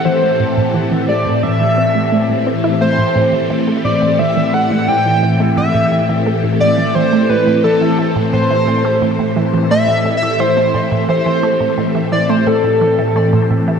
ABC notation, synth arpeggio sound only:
X:1
M:4/4
L:1/16
Q:1/4=87
K:Am
V:1 name="Synth arpeggio sound" clef=bass
E, A, A,, A,, E, E, A, A,, A,, E, C A, A, A,, C E | A, A,, A,, E, E, A, A,, A,, E, E, A, A,, A,, E, E, A, | A,, A,, E, E, A, A,, A,, E, E, A, A,, A,, E, E, A, A,, | A,, E, E, A, A,, A,, E, E, A, A,, A,, E, E, A, A,, A,, |
E, E, A, A,, A,, E, E, A, A,, A,, E, E, A, A,, A,, E, |]